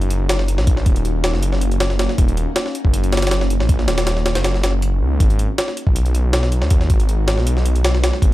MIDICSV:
0, 0, Header, 1, 4, 480
1, 0, Start_track
1, 0, Key_signature, 5, "minor"
1, 0, Tempo, 377358
1, 857, Time_signature, 4, 2, 24, 8
1, 10603, End_track
2, 0, Start_track
2, 0, Title_t, "Ambient pad"
2, 0, Program_c, 0, 92
2, 0, Note_on_c, 0, 58, 80
2, 0, Note_on_c, 0, 61, 77
2, 0, Note_on_c, 0, 63, 79
2, 0, Note_on_c, 0, 66, 75
2, 6565, Note_off_c, 0, 58, 0
2, 6565, Note_off_c, 0, 61, 0
2, 6566, Note_off_c, 0, 66, 0
2, 6567, Note_off_c, 0, 63, 0
2, 6612, Note_on_c, 0, 66, 89
2, 6613, Note_on_c, 0, 63, 75
2, 6614, Note_on_c, 0, 56, 82
2, 6615, Note_on_c, 0, 59, 75
2, 10417, Note_off_c, 0, 63, 0
2, 10603, Note_off_c, 0, 56, 0
2, 10603, Note_off_c, 0, 59, 0
2, 10603, Note_off_c, 0, 66, 0
2, 10603, End_track
3, 0, Start_track
3, 0, Title_t, "Detuned saw bass"
3, 0, Program_c, 1, 39
3, 0, Note_on_c, 1, 30, 84
3, 737, Note_on_c, 1, 34, 92
3, 756, Note_off_c, 1, 30, 0
3, 1076, Note_off_c, 1, 34, 0
3, 1094, Note_on_c, 1, 27, 85
3, 1702, Note_on_c, 1, 30, 85
3, 1721, Note_off_c, 1, 27, 0
3, 2643, Note_off_c, 1, 30, 0
3, 2776, Note_on_c, 1, 27, 100
3, 3122, Note_off_c, 1, 27, 0
3, 3621, Note_on_c, 1, 30, 85
3, 4581, Note_on_c, 1, 34, 92
3, 4601, Note_off_c, 1, 30, 0
3, 4919, Note_off_c, 1, 34, 0
3, 4934, Note_on_c, 1, 27, 88
3, 5541, Note_on_c, 1, 30, 81
3, 5560, Note_off_c, 1, 27, 0
3, 6376, Note_on_c, 1, 37, 92
3, 6395, Note_off_c, 1, 30, 0
3, 6594, Note_off_c, 1, 37, 0
3, 6617, Note_on_c, 1, 32, 103
3, 6963, Note_off_c, 1, 32, 0
3, 7463, Note_on_c, 1, 35, 83
3, 8423, Note_on_c, 1, 39, 91
3, 8442, Note_off_c, 1, 35, 0
3, 8759, Note_off_c, 1, 39, 0
3, 8775, Note_on_c, 1, 32, 88
3, 9382, Note_on_c, 1, 35, 85
3, 9401, Note_off_c, 1, 32, 0
3, 10322, Note_off_c, 1, 35, 0
3, 10456, Note_on_c, 1, 32, 98
3, 10603, Note_off_c, 1, 32, 0
3, 10603, End_track
4, 0, Start_track
4, 0, Title_t, "Drums"
4, 20, Note_on_c, 9, 42, 46
4, 133, Note_off_c, 9, 42, 0
4, 133, Note_on_c, 9, 42, 74
4, 260, Note_off_c, 9, 42, 0
4, 373, Note_on_c, 9, 38, 125
4, 373, Note_on_c, 9, 42, 97
4, 499, Note_off_c, 9, 38, 0
4, 499, Note_on_c, 9, 38, 54
4, 501, Note_off_c, 9, 42, 0
4, 615, Note_on_c, 9, 42, 70
4, 626, Note_off_c, 9, 38, 0
4, 739, Note_on_c, 9, 38, 61
4, 742, Note_off_c, 9, 42, 0
4, 853, Note_on_c, 9, 42, 89
4, 855, Note_on_c, 9, 36, 115
4, 866, Note_off_c, 9, 38, 0
4, 981, Note_off_c, 9, 42, 0
4, 982, Note_on_c, 9, 38, 42
4, 983, Note_off_c, 9, 36, 0
4, 1094, Note_on_c, 9, 42, 77
4, 1096, Note_on_c, 9, 36, 100
4, 1109, Note_off_c, 9, 38, 0
4, 1220, Note_off_c, 9, 42, 0
4, 1220, Note_on_c, 9, 42, 42
4, 1223, Note_off_c, 9, 36, 0
4, 1335, Note_off_c, 9, 42, 0
4, 1335, Note_on_c, 9, 42, 60
4, 1462, Note_off_c, 9, 42, 0
4, 1575, Note_on_c, 9, 38, 108
4, 1575, Note_on_c, 9, 42, 82
4, 1699, Note_off_c, 9, 38, 0
4, 1699, Note_on_c, 9, 38, 39
4, 1702, Note_off_c, 9, 42, 0
4, 1813, Note_on_c, 9, 42, 88
4, 1826, Note_off_c, 9, 38, 0
4, 1940, Note_off_c, 9, 42, 0
4, 1940, Note_on_c, 9, 38, 40
4, 2053, Note_on_c, 9, 42, 84
4, 2067, Note_off_c, 9, 38, 0
4, 2181, Note_off_c, 9, 42, 0
4, 2182, Note_on_c, 9, 42, 40
4, 2294, Note_off_c, 9, 42, 0
4, 2294, Note_on_c, 9, 38, 124
4, 2294, Note_on_c, 9, 42, 95
4, 2418, Note_off_c, 9, 38, 0
4, 2418, Note_on_c, 9, 38, 51
4, 2421, Note_off_c, 9, 42, 0
4, 2535, Note_off_c, 9, 38, 0
4, 2535, Note_on_c, 9, 38, 104
4, 2535, Note_on_c, 9, 42, 80
4, 2662, Note_off_c, 9, 38, 0
4, 2662, Note_off_c, 9, 42, 0
4, 2662, Note_on_c, 9, 38, 45
4, 2776, Note_on_c, 9, 42, 91
4, 2777, Note_on_c, 9, 36, 118
4, 2790, Note_off_c, 9, 38, 0
4, 2903, Note_off_c, 9, 42, 0
4, 2904, Note_off_c, 9, 36, 0
4, 2905, Note_on_c, 9, 42, 47
4, 3018, Note_off_c, 9, 42, 0
4, 3018, Note_on_c, 9, 42, 70
4, 3145, Note_off_c, 9, 42, 0
4, 3254, Note_on_c, 9, 38, 119
4, 3254, Note_on_c, 9, 42, 92
4, 3381, Note_off_c, 9, 38, 0
4, 3381, Note_off_c, 9, 42, 0
4, 3381, Note_on_c, 9, 38, 41
4, 3497, Note_on_c, 9, 42, 72
4, 3508, Note_off_c, 9, 38, 0
4, 3621, Note_on_c, 9, 36, 96
4, 3624, Note_off_c, 9, 42, 0
4, 3734, Note_on_c, 9, 42, 92
4, 3748, Note_off_c, 9, 36, 0
4, 3862, Note_off_c, 9, 42, 0
4, 3862, Note_on_c, 9, 42, 46
4, 3975, Note_off_c, 9, 42, 0
4, 3975, Note_on_c, 9, 38, 93
4, 3975, Note_on_c, 9, 42, 70
4, 4036, Note_off_c, 9, 38, 0
4, 4036, Note_off_c, 9, 42, 0
4, 4036, Note_on_c, 9, 38, 94
4, 4036, Note_on_c, 9, 42, 69
4, 4101, Note_off_c, 9, 38, 0
4, 4101, Note_off_c, 9, 42, 0
4, 4101, Note_on_c, 9, 38, 86
4, 4101, Note_on_c, 9, 42, 68
4, 4158, Note_off_c, 9, 38, 0
4, 4158, Note_off_c, 9, 42, 0
4, 4158, Note_on_c, 9, 38, 89
4, 4158, Note_on_c, 9, 42, 67
4, 4214, Note_off_c, 9, 38, 0
4, 4214, Note_off_c, 9, 42, 0
4, 4214, Note_on_c, 9, 38, 120
4, 4214, Note_on_c, 9, 42, 91
4, 4341, Note_off_c, 9, 38, 0
4, 4341, Note_off_c, 9, 42, 0
4, 4341, Note_on_c, 9, 38, 53
4, 4457, Note_on_c, 9, 42, 69
4, 4468, Note_off_c, 9, 38, 0
4, 4584, Note_off_c, 9, 42, 0
4, 4584, Note_on_c, 9, 38, 60
4, 4695, Note_on_c, 9, 42, 89
4, 4696, Note_on_c, 9, 36, 109
4, 4711, Note_off_c, 9, 38, 0
4, 4822, Note_off_c, 9, 42, 0
4, 4822, Note_on_c, 9, 38, 44
4, 4823, Note_off_c, 9, 36, 0
4, 4934, Note_off_c, 9, 38, 0
4, 4934, Note_on_c, 9, 38, 109
4, 4934, Note_on_c, 9, 42, 78
4, 5059, Note_off_c, 9, 38, 0
4, 5059, Note_off_c, 9, 42, 0
4, 5059, Note_on_c, 9, 38, 107
4, 5059, Note_on_c, 9, 42, 83
4, 5174, Note_off_c, 9, 38, 0
4, 5174, Note_off_c, 9, 42, 0
4, 5174, Note_on_c, 9, 38, 107
4, 5174, Note_on_c, 9, 42, 80
4, 5301, Note_off_c, 9, 38, 0
4, 5301, Note_off_c, 9, 42, 0
4, 5301, Note_on_c, 9, 38, 43
4, 5415, Note_off_c, 9, 38, 0
4, 5415, Note_on_c, 9, 38, 104
4, 5415, Note_on_c, 9, 42, 82
4, 5537, Note_off_c, 9, 38, 0
4, 5537, Note_off_c, 9, 42, 0
4, 5537, Note_on_c, 9, 38, 103
4, 5537, Note_on_c, 9, 42, 79
4, 5653, Note_off_c, 9, 38, 0
4, 5653, Note_off_c, 9, 42, 0
4, 5653, Note_on_c, 9, 38, 105
4, 5653, Note_on_c, 9, 42, 80
4, 5780, Note_off_c, 9, 38, 0
4, 5780, Note_off_c, 9, 42, 0
4, 5780, Note_on_c, 9, 38, 39
4, 5896, Note_off_c, 9, 38, 0
4, 5896, Note_on_c, 9, 38, 106
4, 5896, Note_on_c, 9, 42, 79
4, 6023, Note_off_c, 9, 38, 0
4, 6023, Note_off_c, 9, 42, 0
4, 6135, Note_on_c, 9, 42, 68
4, 6262, Note_off_c, 9, 42, 0
4, 6617, Note_on_c, 9, 36, 113
4, 6618, Note_on_c, 9, 42, 89
4, 6744, Note_off_c, 9, 36, 0
4, 6744, Note_off_c, 9, 42, 0
4, 6744, Note_on_c, 9, 42, 45
4, 6858, Note_off_c, 9, 42, 0
4, 6858, Note_on_c, 9, 42, 68
4, 6986, Note_off_c, 9, 42, 0
4, 7101, Note_on_c, 9, 38, 117
4, 7101, Note_on_c, 9, 42, 89
4, 7226, Note_off_c, 9, 38, 0
4, 7226, Note_on_c, 9, 38, 43
4, 7228, Note_off_c, 9, 42, 0
4, 7340, Note_on_c, 9, 42, 70
4, 7353, Note_off_c, 9, 38, 0
4, 7463, Note_on_c, 9, 36, 97
4, 7467, Note_off_c, 9, 42, 0
4, 7578, Note_on_c, 9, 42, 88
4, 7590, Note_off_c, 9, 36, 0
4, 7703, Note_off_c, 9, 42, 0
4, 7703, Note_on_c, 9, 42, 45
4, 7818, Note_off_c, 9, 42, 0
4, 7818, Note_on_c, 9, 42, 68
4, 7945, Note_off_c, 9, 42, 0
4, 8053, Note_on_c, 9, 38, 126
4, 8053, Note_on_c, 9, 42, 96
4, 8179, Note_off_c, 9, 38, 0
4, 8179, Note_on_c, 9, 38, 55
4, 8181, Note_off_c, 9, 42, 0
4, 8293, Note_on_c, 9, 42, 71
4, 8306, Note_off_c, 9, 38, 0
4, 8416, Note_on_c, 9, 38, 57
4, 8420, Note_off_c, 9, 42, 0
4, 8528, Note_on_c, 9, 42, 92
4, 8534, Note_on_c, 9, 36, 116
4, 8544, Note_off_c, 9, 38, 0
4, 8655, Note_off_c, 9, 42, 0
4, 8660, Note_on_c, 9, 38, 43
4, 8661, Note_off_c, 9, 36, 0
4, 8774, Note_on_c, 9, 42, 76
4, 8775, Note_on_c, 9, 36, 100
4, 8787, Note_off_c, 9, 38, 0
4, 8900, Note_off_c, 9, 42, 0
4, 8900, Note_on_c, 9, 42, 42
4, 8902, Note_off_c, 9, 36, 0
4, 9016, Note_off_c, 9, 42, 0
4, 9016, Note_on_c, 9, 42, 62
4, 9143, Note_off_c, 9, 42, 0
4, 9256, Note_on_c, 9, 38, 108
4, 9256, Note_on_c, 9, 42, 82
4, 9382, Note_off_c, 9, 38, 0
4, 9382, Note_on_c, 9, 38, 39
4, 9383, Note_off_c, 9, 42, 0
4, 9498, Note_on_c, 9, 42, 93
4, 9509, Note_off_c, 9, 38, 0
4, 9625, Note_off_c, 9, 42, 0
4, 9626, Note_on_c, 9, 38, 38
4, 9738, Note_on_c, 9, 42, 82
4, 9753, Note_off_c, 9, 38, 0
4, 9865, Note_off_c, 9, 42, 0
4, 9865, Note_on_c, 9, 42, 42
4, 9979, Note_off_c, 9, 42, 0
4, 9979, Note_on_c, 9, 38, 122
4, 9979, Note_on_c, 9, 42, 96
4, 10106, Note_off_c, 9, 38, 0
4, 10106, Note_off_c, 9, 42, 0
4, 10107, Note_on_c, 9, 38, 50
4, 10221, Note_off_c, 9, 38, 0
4, 10221, Note_on_c, 9, 38, 110
4, 10221, Note_on_c, 9, 42, 85
4, 10346, Note_off_c, 9, 38, 0
4, 10346, Note_on_c, 9, 38, 46
4, 10348, Note_off_c, 9, 42, 0
4, 10458, Note_on_c, 9, 36, 116
4, 10461, Note_on_c, 9, 42, 90
4, 10474, Note_off_c, 9, 38, 0
4, 10585, Note_off_c, 9, 36, 0
4, 10588, Note_off_c, 9, 42, 0
4, 10603, End_track
0, 0, End_of_file